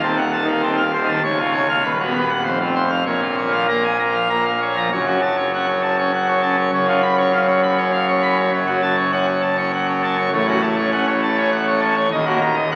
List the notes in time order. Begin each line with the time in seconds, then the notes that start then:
Already playing: D#1 D#2
0.03 C4 A5
0.18 F#5
0.33 A5
0.44 D#3
0.48 F5
0.63 C4 A5
0.78 F5
0.94 C5
1.03 D#3
1.09 A5
1.24 C#1 C#2 C#5
1.39 F4
1.44 C#4
1.53 C#5
1.69 F5
1.84 D#1 D#2 B4
2.00 F#4
2.05 B3
2.15 B4
2.29 F#5
2.44 F1 F2 C5
2.60 F4
2.65 C4
2.75 C5
2.90 F5
3.06 A#1 A#2 C#5
3.21 F4
3.37 C#5
3.48 F3
3.53 F5
3.68 A#3 A#5
3.84 G#5
3.99 A#5
4.09 F3
4.14 F5
4.30 A#3 A#5
4.45 F5
4.61 C#5
4.72 F3
4.77 A#5
4.92 F#1 F#2 C#5
5.07 C#4 F#4
5.22 A5
5.37 C#5
5.53 C#4 F#5
5.68 C#5
5.83 A5
5.98 C#4 C#5
6.14 F#5
6.28 C#5
6.42 C#4 A5
6.58 C#5
6.73 F#1 F#2 C#5
6.88 C#4 F4
7.02 B5
7.18 C#5
7.33 C#4 F5
7.47 C#5
7.63 B5
7.77 C#4 C#5
7.92 F5
8.08 C#5
8.22 C#4 B5
8.37 C#5
8.53 F#1 F#2 C#5
8.67 C#4 F#4
8.82 A5
8.97 C#5
9.12 C#4 F#5
9.28 C#5
9.42 A5
9.57 C#4 C#5
9.73 F#5
9.88 C#5
10.03 C#4 A5
10.17 C#5
10.32 A1 A2 C#5
10.48 C#4 F#4
10.62 A5
10.77 C#5
10.92 C#4 F#5
11.07 C#5
11.22 A5
11.36 C#4 C#5
11.52 F#5
11.67 C#5
11.81 C#4 A5
11.96 C#5
12.12 D#1 D#2 D#5
12.26 A#3 F#4
12.41 A#5
12.56 D#5
12.71 A#3 F#5